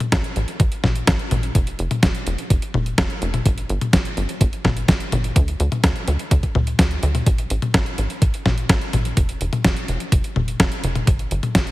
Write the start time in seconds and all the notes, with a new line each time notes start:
0.00 closed hi-hat, high tom
0.12 A1, kick, snare, closed hi-hat
0.24 closed hi-hat
0.36 A1, closed hi-hat
0.48 closed hi-hat
0.60 A1, kick, closed hi-hat
0.72 closed hi-hat
0.84 A1, kick, snare, high tom
0.96 closed hi-hat
1.07 A1, kick, snare, closed hi-hat
1.19 closed hi-hat
1.31 A1, closed hi-hat, high tom
1.43 closed hi-hat
1.55 F1, kick, closed hi-hat
1.67 closed hi-hat
1.79 F1, closed hi-hat
1.91 closed hi-hat, high tom
2.03 F1, kick, snare, closed hi-hat
2.15 closed hi-hat
2.26 F1, closed hi-hat
2.38 closed hi-hat
2.50 F1, kick, closed hi-hat
2.62 closed hi-hat
2.74 F1, high tom
2.86 closed hi-hat
2.98 F1, kick, snare, closed hi-hat
3.10 closed hi-hat
3.22 F1, closed hi-hat
3.34 closed hi-hat, high tom
3.46 G1, kick, closed hi-hat
3.58 closed hi-hat
3.69 G1, closed hi-hat
3.81 closed hi-hat, high tom
3.93 G1, kick, snare, closed hi-hat
4.05 closed hi-hat
4.17 G1, closed hi-hat
4.29 closed hi-hat
4.41 G1, kick, closed hi-hat
4.53 closed hi-hat
4.65 G1, kick, snare, high tom
4.77 closed hi-hat
4.88 G1, kick, snare, closed hi-hat
5.00 closed hi-hat
5.12 G1, closed hi-hat, high tom
5.24 closed hi-hat
5.36 D2, kick, closed hi-hat
5.48 closed hi-hat
5.60 D2, closed hi-hat
5.72 closed hi-hat, high tom
5.84 D2, kick, snare, closed hi-hat
5.96 closed hi-hat
6.08 D2, closed hi-hat
6.19 closed hi-hat
6.31 D2, kick, closed hi-hat
6.43 kick, closed hi-hat
6.55 D2, high tom
6.67 closed hi-hat
6.79 D2, kick, snare, closed hi-hat
6.91 closed hi-hat
7.03 D2, closed hi-hat
7.15 closed hi-hat, high tom
7.26 A1, kick, closed hi-hat
7.38 closed hi-hat
7.50 A1, closed hi-hat
7.62 closed hi-hat, high tom
7.74 A1, kick, snare, closed hi-hat
7.86 closed hi-hat
7.98 A1, closed hi-hat
8.10 closed hi-hat
8.22 A1, kick, closed hi-hat
8.34 closed hi-hat
8.46 A1, kick, snare, high tom
8.58 closed hi-hat
8.69 A1, kick, snare, closed hi-hat
8.81 closed hi-hat
8.93 A1, closed hi-hat, high tom
9.05 closed hi-hat
9.17 F1, kick, closed hi-hat
9.29 closed hi-hat
9.41 F1, closed hi-hat
9.53 closed hi-hat, high tom
9.65 F1, kick, snare, closed hi-hat
9.77 closed hi-hat
9.88 F1, closed hi-hat
10.00 closed hi-hat
10.12 F1, kick, closed hi-hat
10.24 closed hi-hat
10.36 F1, high tom
10.48 closed hi-hat
10.60 F1, kick, snare, closed hi-hat
10.72 closed hi-hat
10.83 F1, closed hi-hat
10.95 closed hi-hat, high tom
11.07 G1, kick, closed hi-hat
11.19 closed hi-hat
11.31 G1, closed hi-hat
11.43 closed hi-hat, high tom
11.55 G1, kick, snare, closed hi-hat
11.67 closed hi-hat